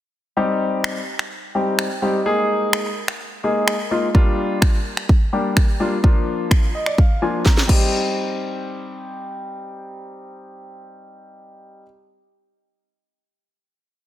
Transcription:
0.37 G3 C4 D#4 G4
0.84 finger snap
1.19 finger snap
1.55 G3 C4 D#4 G4
1.79 finger snap
2.02 G3 C4 D#4 G4
2.25 G#3 A#3 D#4 G#4
2.73 finger snap
3.08 finger snap
3.44 G#3 A#3 D#4 G#4
3.68 finger snap
3.91 G#3 A#3 D#4 F4
4.14 G3 A#3 D4 F4, kick
4.62 finger snap, kick
4.97 finger snap
5.09 kick
5.33 G3 A#3 D4 G4
5.57 finger snap, kick
5.80 G3 A#3 D4 F4
6.03 F3 A#3 D4 F4, kick
6.51 finger snap, kick
6.75 D#5
6.86 D5, finger snap
6.98 F5, kick
7.22 F3 A#3 D4 F4 G#5
7.46 A#5, kick, snare
7.57 snare
7.67 G3 C4 D#4 G4, kick, crash

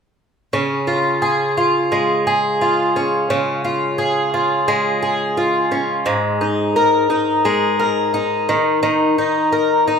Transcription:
0.53 C#3
0.87 F4
1.22 G#4
1.57 F4
1.92 G#3
2.27 G#4
2.61 F4
2.96 C#4
3.30 C#3
3.65 F4
3.98 G#4
4.34 F4
4.68 G#3
5.02 G#4
5.37 F4
5.71 C#4
6.06 G#2
6.41 D#4
6.76 A#4
7.10 D#4
7.45 G#3
7.79 A#4
8.14 D#4
8.49 D#3
8.83 D#3
9.18 D#4
9.52 A#4
9.88 D#4

